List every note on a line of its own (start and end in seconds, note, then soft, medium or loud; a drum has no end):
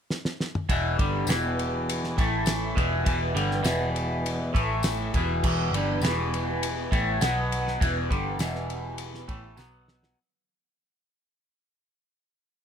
0.10 snare medium
0.25 snare medium
0.40 snare medium
0.55 mid tom medium
0.69 0.97 E1 medium
0.69 0.98 E2 medium
0.69 0.98 B2 loud
0.69 0.98 E3 loud
0.69 2.74 E3 medium
0.69 2.17 B3 medium
0.69 2.17 G4 medium
0.69 2.17 B4 medium
0.69 kick loud
0.69 ride loud
0.99 1.26 G1 medium
0.99 1.27 G2 medium
0.99 1.27 D3 medium
0.99 1.27 G3 medium
0.99 kick loud
0.99 ride medium
1.27 2.12 E1 medium
1.27 2.16 E2 medium
1.27 2.17 B2 medium
1.27 2.17 E3 loud
1.27 snare loud
1.27 ride medium
1.27 tambourine loud
1.59 ride medium
1.89 ride loud
2.04 snare soft
2.17 2.73 A1 loud
2.17 2.75 A2 medium
2.17 2.76 E3 medium
2.17 2.76 A3 medium
2.17 2.76 A3 loud
2.17 2.76 A4 medium
2.17 2.77 E5 medium
2.17 kick loud
2.17 ride medium
2.46 snare loud
2.46 ride loud
2.46 tambourine medium
2.75 3.04 E1 loud
2.75 3.03 E2 medium
2.75 3.04 B2 loud
2.75 4.52 E3 medium
2.75 3.04 E3 loud
2.75 4.52 B3 medium
2.75 4.52 G4 medium
2.75 4.52 B4 medium
2.75 kick loud
2.75 ride medium
3.04 3.34 E1 medium
3.04 3.34 E2 medium
3.04 3.34 B2 loud
3.04 3.35 E3 medium
3.04 kick loud
3.04 ride medium
3.34 3.63 G1 medium
3.34 3.62 G2 medium
3.34 3.63 D3 loud
3.34 3.63 G3 medium
3.34 ride medium
3.51 snare soft
3.63 4.50 E1 loud
3.63 4.52 E2 medium
3.63 4.52 B2 loud
3.63 4.52 E3 medium
3.63 snare loud
3.63 ride medium
3.63 tambourine loud
3.96 ride medium
4.26 ride medium
4.53 5.10 A1 medium
4.53 5.12 A2 medium
4.53 5.13 E3 medium
4.53 7.19 E3 medium
4.53 5.12 A3 medium
4.53 5.14 A3 medium
4.53 kick loud
4.53 ride medium
4.57 5.14 A4 medium
4.57 5.15 E5 medium
4.83 snare loud
4.83 ride medium
4.83 tambourine medium
5.14 5.41 E1 loud
5.14 5.42 E2 medium
5.14 5.43 B2 medium
5.14 5.43 E3 loud
5.14 7.19 B3 medium
5.14 7.19 G4 medium
5.14 7.19 B4 medium
5.14 kick loud
5.14 ride medium
5.43 5.71 E1 loud
5.43 5.72 E2 medium
5.43 5.72 B2 loud
5.43 5.72 E3 loud
5.43 kick loud
5.43 crash loud
5.71 5.99 G1 medium
5.71 6.02 G2 medium
5.71 6.02 D3 medium
5.71 ride medium
5.76 6.03 G3 loud
6.01 6.87 E1 loud
6.01 6.90 E2 medium
6.01 6.90 B2 loud
6.01 6.90 E3 loud
6.01 snare loud
6.01 ride medium
6.01 tambourine loud
6.34 ride medium
6.63 ride loud
6.91 7.19 A1 medium
6.91 7.20 A2 medium
6.91 7.20 E3 medium
6.91 7.21 A3 medium
6.91 kick loud
6.91 ride medium
7.21 7.76 B1 medium
7.21 7.79 B2 loud
7.21 7.79 F#3 loud
7.21 7.80 F#3 medium
7.21 7.79 B3 loud
7.21 9.57 B3 medium
7.21 10.16 B4 medium
7.21 7.80 F#5 medium
7.21 snare loud
7.21 ride loud
7.21 tambourine medium
7.52 ride medium
7.68 snare soft
7.81 8.09 E1 medium
7.81 8.09 E2 medium
7.81 8.09 B2 medium
7.81 8.09 E3 loud
7.81 9.57 E3 medium
7.81 9.57 G4 medium
7.81 kick loud
7.81 ride loud
8.10 8.38 G1 medium
8.10 8.38 G2 medium
8.10 8.39 D3 medium
8.10 8.39 G3 loud
8.10 kick loud
8.10 ride medium
8.39 9.25 E1 medium
8.39 9.28 E2 medium
8.39 9.27 B2 loud
8.39 9.27 E3 medium
8.39 snare loud
8.39 ride medium
8.39 tambourine loud
8.55 snare soft
8.70 ride medium
8.98 ride loud
9.14 snare soft
9.28 9.56 A1 medium
9.28 9.56 A2 medium
9.28 9.56 E3 medium
9.28 9.57 A3 loud
9.28 kick loud
9.28 ride medium
9.56 10.13 B1 loud
9.56 10.16 B2 medium
9.56 10.16 F#3 medium
9.56 10.17 F#3 medium
9.56 10.17 B3 loud
9.56 10.17 B3 medium
9.56 10.17 F#5 medium
9.56 snare medium
9.56 tambourine medium
9.88 snare medium
10.03 snare medium